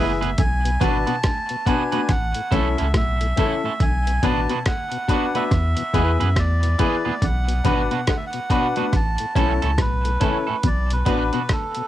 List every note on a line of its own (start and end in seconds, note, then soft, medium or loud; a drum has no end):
0.00 0.35 F#1 medium
0.00 0.11 B3 medium
0.00 0.11 E4 medium
0.00 0.16 E4 medium
0.00 0.11 G#4 medium
0.00 0.16 G#4 medium
0.00 0.11 B4 medium
0.00 0.17 B4 medium
0.00 0.42 E5 medium
0.21 0.28 E2 medium
0.21 0.28 B2 medium
0.21 0.30 B3 medium
0.21 0.30 E4 medium
0.21 0.29 G#4 medium
0.21 0.29 B4 medium
0.21 closed hi-hat soft
0.21 high conga soft
0.38 0.77 B1 loud
0.38 0.59 D3 medium
0.38 0.83 G#5 loud
0.38 kick loud
0.38 closed hi-hat medium
0.38 low conga medium
0.65 0.71 B2 medium
0.65 closed hi-hat medium
0.80 1.05 G#1 medium
0.80 1.02 B2 medium
0.80 0.90 F#3 medium
0.80 0.97 B3 medium
0.80 0.90 B3 medium
0.80 1.01 D4 loud
0.80 0.90 D4 medium
0.80 0.97 D4 medium
0.80 1.02 F#4 medium
0.80 0.97 F#4 medium
0.80 1.02 B4 loud
0.80 0.97 B4 medium
0.80 1.70 A5 loud
0.80 kick medium
0.80 closed hi-hat medium
0.80 low conga medium
1.06 1.13 B2 medium
1.06 1.20 B2 medium
1.06 1.15 B3 soft
1.06 1.15 D4 medium
1.06 1.15 F#4 medium
1.06 1.15 B4 medium
1.06 closed hi-hat soft
1.23 1.45 D3 medium
1.23 kick loud
1.23 cross-stick medium
1.23 closed hi-hat medium
1.23 high conga soft
1.49 1.56 B2 medium
1.49 closed hi-hat soft
1.66 1.87 B2 medium
1.66 1.76 F#3 medium
1.66 1.76 B3 medium
1.66 1.82 B3 medium
1.66 1.87 D4 medium
1.66 1.76 D4 medium
1.66 1.82 D4 medium
1.66 1.88 F#4 medium
1.66 1.83 F#4 medium
1.66 1.88 B4 loud
1.66 1.83 B4 medium
1.66 2.11 G#5 medium
1.66 kick medium
1.66 closed hi-hat medium
1.92 1.98 B2 medium
1.92 2.01 B3 medium
1.92 2.06 D4 medium
1.92 2.01 D4 medium
1.92 2.00 F#4 medium
1.92 2.06 F#4 medium
1.92 2.00 B4 medium
1.92 2.06 B4 medium
1.92 closed hi-hat soft
1.92 high conga medium
2.09 2.33 A1 loud
2.09 2.54 F#5 loud
2.09 kick loud
2.09 cross-stick medium
2.09 closed hi-hat medium
2.09 low conga medium
2.34 2.41 A2 medium
2.34 closed hi-hat medium
2.51 2.76 B1 medium
2.51 2.61 E3 medium
2.51 2.67 A3 medium
2.51 2.61 A3 medium
2.51 2.61 C#4 medium
2.51 2.68 C#4 medium
2.51 2.73 C#4 medium
2.51 2.67 E4 medium
2.51 2.73 E4 medium
2.51 2.68 A4 loud
2.51 2.73 A4 loud
2.51 2.92 E5 loud
2.51 kick medium
2.51 closed hi-hat medium
2.51 high conga medium
2.51 low conga medium
2.77 2.94 C#2 medium
2.77 2.84 A2 medium
2.77 2.87 A3 medium
2.77 2.86 C#4 medium
2.77 2.85 E4 soft
2.77 2.86 E4 medium
2.77 2.86 A4 medium
2.77 2.85 A4 soft
2.77 closed hi-hat soft
2.94 3.33 B1 medium
2.94 3.15 A2 medium
2.94 3.84 E5 loud
2.94 kick loud
2.94 cross-stick loud
2.94 closed hi-hat medium
2.94 high conga medium
3.21 3.27 A2 medium
3.21 closed hi-hat medium
3.36 3.58 C#3 medium
3.36 3.46 E3 medium
3.36 3.47 A3 medium
3.36 3.53 A3 medium
3.36 3.58 C#4 medium
3.36 3.47 C#4 medium
3.36 3.54 C#4 medium
3.36 3.58 E4 medium
3.36 3.54 E4 loud
3.36 3.59 A4 loud
3.36 3.54 A4 loud
3.36 kick medium
3.36 closed hi-hat medium
3.36 low conga medium
3.64 3.70 A2 medium
3.64 3.73 A3 soft
3.64 3.72 C#4 medium
3.64 3.72 E4 medium
3.64 3.72 A4 medium
3.64 high conga soft
3.80 4.19 B1 loud
3.80 4.01 D3 medium
3.80 4.25 G#5 loud
3.80 kick loud
3.80 closed hi-hat medium
3.80 low conga medium
4.06 4.12 B2 medium
4.06 closed hi-hat medium
4.23 4.47 A1 medium
4.23 4.43 B2 medium
4.23 4.32 F#3 medium
4.23 4.32 B3 medium
4.23 4.39 B3 medium
4.23 4.44 D4 loud
4.23 4.33 D4 medium
4.23 4.39 D4 medium
4.23 4.44 F#4 medium
4.23 4.39 F#4 medium
4.23 4.44 B4 loud
4.23 4.40 B4 medium
4.23 4.63 A5 loud
4.23 kick medium
4.23 closed hi-hat medium
4.23 low conga medium
4.49 4.62 B2 medium
4.49 4.55 B2 medium
4.49 4.58 B3 medium
4.49 4.58 D4 medium
4.49 4.58 F#4 medium
4.49 4.57 B4 medium
4.49 closed hi-hat soft
4.66 4.86 D3 loud
4.66 5.37 F#5 loud
4.66 kick loud
4.66 cross-stick loud
4.66 closed hi-hat medium
4.66 high conga medium
4.91 4.98 B2 medium
4.91 closed hi-hat soft
5.08 5.29 D3 medium
5.08 5.18 F#3 medium
5.08 5.18 B3 medium
5.08 5.25 B3 medium
5.08 5.29 D4 medium
5.08 5.18 D4 medium
5.08 5.25 D4 medium
5.08 5.30 F#4 medium
5.08 5.25 F#4 medium
5.08 5.30 B4 loud
5.08 5.25 B4 medium
5.08 kick medium
5.08 closed hi-hat medium
5.34 5.40 B2 medium
5.34 5.44 B3 medium
5.34 5.48 D4 medium
5.34 5.43 D4 medium
5.34 5.48 F#4 medium
5.34 5.43 F#4 medium
5.34 5.43 B4 medium
5.34 5.48 B4 medium
5.34 6.40 E5 loud
5.34 closed hi-hat soft
5.34 high conga medium
5.51 5.75 E2 loud
5.51 kick loud
5.51 cross-stick medium
5.51 closed hi-hat medium
5.51 low conga medium
5.77 5.83 E2 medium
5.77 5.83 B2 medium
5.77 closed hi-hat medium
5.93 6.18 E2 medium
5.93 6.03 G#3 medium
5.93 6.03 B3 medium
5.93 6.10 B3 loud
5.93 6.14 E4 medium
5.93 6.03 E4 medium
5.93 6.10 E4 loud
5.93 6.15 G#4 medium
5.93 6.10 G#4 loud
5.93 6.15 B4 loud
5.93 6.10 B4 loud
5.93 kick medium
5.93 closed hi-hat medium
5.93 high conga medium
5.93 low conga medium
6.19 6.25 E2 medium
6.19 6.36 F#2 medium
6.19 6.25 B2 medium
6.19 6.28 B3 medium
6.19 6.28 E4 medium
6.19 6.26 G#4 soft
6.19 6.28 G#4 medium
6.19 6.26 B4 soft
6.19 6.28 B4 medium
6.19 closed hi-hat soft
6.36 6.75 E2 loud
6.36 7.26 D5 medium
6.36 kick loud
6.36 cross-stick loud
6.36 closed hi-hat medium
6.36 high conga medium
6.63 6.69 E2 medium
6.63 6.69 B2 medium
6.63 closed hi-hat medium
6.78 6.89 G#3 medium
6.78 6.95 B3 medium
6.78 6.89 B3 medium
6.78 7.00 E4 medium
6.78 6.95 E4 medium
6.78 6.89 E4 medium
6.78 7.00 G#4 medium
6.78 6.95 G#4 loud
6.78 7.01 B4 loud
6.78 6.95 B4 loud
6.78 kick medium
6.78 closed hi-hat medium
6.78 low conga medium
7.05 7.11 E2 medium
7.05 7.12 B2 medium
7.05 7.14 B3 medium
7.05 7.13 E4 medium
7.05 7.13 G#4 medium
7.05 7.13 B4 medium
7.05 high conga medium
7.22 7.61 B1 loud
7.22 7.43 D3 medium
7.22 7.65 F#5 loud
7.22 kick loud
7.22 closed hi-hat medium
7.22 low conga medium
7.48 7.54 B2 medium
7.48 closed hi-hat medium
7.64 7.89 G#1 medium
7.64 7.85 B2 medium
7.64 7.74 F#3 medium
7.64 7.81 B3 medium
7.64 7.74 B3 medium
7.64 7.85 D4 medium
7.64 7.81 D4 medium
7.64 7.75 D4 medium
7.64 7.86 F#4 medium
7.64 7.81 F#4 medium
7.64 7.86 B4 loud
7.64 7.81 B4 loud
7.64 8.08 F#5 medium
7.64 kick medium
7.64 closed hi-hat medium
7.64 low conga medium
7.91 8.04 B2 medium
7.91 7.97 B2 medium
7.91 8.00 B3 soft
7.91 7.99 D4 medium
7.91 7.99 F#4 medium
7.91 7.99 B4 medium
7.91 closed hi-hat soft
8.07 8.28 D3 medium
8.07 8.17 F#5 loud
8.07 kick loud
8.07 cross-stick loud
8.07 closed hi-hat medium
8.07 high conga medium
8.17 8.25 E5 medium
8.27 8.96 F#5 loud
8.33 8.40 B2 medium
8.33 closed hi-hat soft
8.50 8.71 B2 medium
8.50 8.60 F#3 medium
8.50 8.66 B3 medium
8.50 8.60 B3 medium
8.50 8.71 D4 medium
8.50 8.66 D4 medium
8.50 8.61 D4 medium
8.50 8.71 F#4 medium
8.50 8.66 F#4 medium
8.50 8.72 B4 loud
8.50 8.67 B4 medium
8.50 kick medium
8.50 closed hi-hat medium
8.76 8.83 B2 medium
8.76 8.85 B3 medium
8.76 8.90 D4 medium
8.76 8.85 D4 medium
8.76 8.90 F#4 medium
8.76 8.85 F#4 medium
8.76 8.90 B4 medium
8.76 8.85 B4 medium
8.76 closed hi-hat soft
8.76 high conga medium
8.92 9.17 A1 medium
8.92 9.34 A5 loud
8.92 kick loud
8.92 cross-stick medium
8.92 closed hi-hat medium
8.92 low conga medium
9.18 9.26 A2 medium
9.18 closed hi-hat medium
9.35 9.60 B1 loud
9.35 9.45 E3 medium
9.35 9.52 A3 medium
9.35 9.46 A3 medium
9.35 9.56 C#4 medium
9.35 9.52 C#4 medium
9.35 9.46 C#4 medium
9.35 9.57 E4 medium
9.35 9.52 E4 medium
9.35 9.57 A4 loud
9.35 9.52 A4 medium
9.35 9.81 A5 loud
9.35 kick medium
9.35 closed hi-hat medium
9.35 high conga medium
9.35 low conga medium
9.62 9.78 C#2 medium
9.62 9.69 A2 medium
9.62 9.71 A3 medium
9.62 9.70 C#4 medium
9.62 9.70 E4 medium
9.62 9.70 A4 medium
9.62 closed hi-hat soft
9.78 10.17 B1 loud
9.78 9.99 A2 medium
9.78 10.68 B4 medium
9.78 kick loud
9.78 cross-stick loud
9.78 closed hi-hat loud
9.78 high conga medium
10.05 10.11 A2 medium
10.05 closed hi-hat medium
10.20 10.42 C#3 medium
10.20 10.31 E3 medium
10.20 10.37 A3 medium
10.20 10.31 A3 medium
10.20 10.42 C#4 medium
10.20 10.37 C#4 medium
10.20 10.31 C#4 medium
10.20 10.42 E4 medium
10.20 10.37 E4 medium
10.20 10.37 A4 medium
10.20 10.42 A4 loud
10.20 kick medium
10.20 closed hi-hat medium
10.20 low conga medium
10.47 10.54 A2 medium
10.47 10.56 A3 soft
10.47 10.55 C#4 medium
10.47 10.55 E4 medium
10.47 10.55 A4 medium
10.47 high conga soft
10.63 11.03 B1 loud
10.63 10.84 B2 medium
10.63 10.92 D5 loud
10.63 kick loud
10.63 closed hi-hat medium
10.63 low conga medium
10.90 10.97 B2 medium
10.90 11.53 B4 loud
10.90 closed hi-hat medium
11.05 11.31 A1 loud
11.05 11.27 A2 medium
11.05 11.17 F#3 medium
11.05 11.22 B3 medium
11.05 11.17 B3 medium
11.05 11.27 D4 loud
11.05 11.22 D4 medium
11.05 11.17 D4 medium
11.05 11.27 F#4 medium
11.05 11.22 F#4 medium
11.05 11.28 B4 loud
11.05 11.23 B4 medium
11.05 kick medium
11.05 closed hi-hat medium
11.05 low conga medium
11.33 11.46 B2 medium
11.33 11.40 B2 medium
11.33 11.41 B3 soft
11.33 11.41 D4 soft
11.33 11.41 F#4 medium
11.33 11.41 B4 medium
11.33 closed hi-hat soft
11.49 11.70 D3 medium
11.49 11.88 A4 medium
11.49 kick loud
11.49 cross-stick loud
11.49 closed hi-hat medium
11.49 high conga soft
11.75 11.82 B2 medium
11.75 closed hi-hat soft